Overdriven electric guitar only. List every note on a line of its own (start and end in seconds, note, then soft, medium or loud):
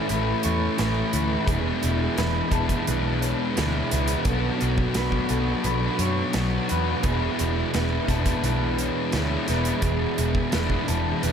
0.00 0.77 E3 medium
0.00 0.77 A3 medium
0.00 0.78 C#4 medium
0.00 0.79 E4 medium
0.78 1.45 E3 medium
0.78 1.15 A3 medium
0.78 1.13 C#4 medium
0.78 1.12 E4 medium
1.13 1.47 A3 medium
1.13 1.46 C#4 medium
1.13 1.46 E4 medium
1.47 2.17 E2 medium
1.47 2.17 B2 medium
1.47 1.84 E3 medium
1.47 1.83 G#3 loud
1.47 1.83 D4 medium
1.47 1.81 E4 medium
1.82 2.16 E3 medium
1.82 2.17 G#3 medium
1.82 2.19 D4 medium
1.82 2.19 E4 medium
2.17 2.52 E3 medium
2.17 2.52 G#3 medium
2.17 2.52 D4 medium
2.17 2.51 E4 medium
2.52 3.55 E3 medium
2.52 3.56 G#3 medium
2.52 3.58 D4 medium
2.52 3.58 E4 medium
3.56 3.93 E3 medium
3.56 3.92 G#3 medium
3.56 3.92 D4 medium
3.56 3.91 E4 medium
3.92 4.25 E3 medium
3.92 4.25 G#3 medium
3.92 4.29 D4 medium
3.92 4.24 E4 medium
4.27 4.96 B2 medium
4.27 4.95 F#3 medium
4.27 4.63 B3 loud
4.27 4.61 D4 medium
4.27 4.59 F#4 loud
4.60 4.97 B3 medium
4.60 4.98 D4 medium
4.60 4.98 F#4 medium
4.96 5.65 F#3 medium
4.96 5.33 B3 medium
4.96 5.32 D4 medium
4.96 5.30 F#4 medium
5.31 6.36 B3 medium
5.31 6.37 D4 medium
5.31 6.36 F#4 medium
6.35 7.02 F#3 medium
6.35 6.71 B3 medium
6.35 6.70 D4 medium
6.35 6.68 F#4 medium
6.69 7.05 B3 medium
6.69 7.06 D4 medium
6.69 7.02 F#4 medium
7.04 7.79 E2 loud
7.04 7.74 B2 medium
7.04 7.41 E3 medium
7.04 7.40 G#3 medium
7.04 7.39 D4 loud
7.04 7.39 E4 loud
7.39 7.73 E3 medium
7.39 7.74 G#3 medium
7.39 7.75 D4 medium
7.39 7.76 E4 medium
7.74 8.11 E3 medium
7.74 8.10 G#3 medium
7.74 8.09 D4 medium
7.74 8.08 E4 medium
8.08 9.13 E3 medium
8.08 9.14 G#3 medium
8.08 9.15 D4 medium
8.08 9.15 E4 medium
9.13 9.49 E3 medium
9.13 9.49 G#3 medium
9.13 9.47 D4 medium
9.13 9.47 E4 medium
9.47 9.82 E3 medium
9.47 9.83 G#3 medium
9.47 9.83 D4 medium
9.47 9.84 E4 medium
9.83 10.52 E2 medium
9.83 10.52 B2 medium
9.83 10.19 E3 medium
9.83 10.18 G#3 loud
9.83 10.17 D4 loud
9.83 10.16 E4 loud
10.18 10.51 E3 medium
10.18 10.51 G#3 medium
10.18 10.53 D4 medium
10.18 10.54 E4 medium
10.52 10.89 E3 medium
10.52 10.88 G#3 medium
10.52 10.88 D4 medium
10.52 10.87 E4 medium
10.88 11.32 E3 medium
10.88 11.32 G#3 medium
10.88 11.32 D4 medium
10.88 11.32 E4 medium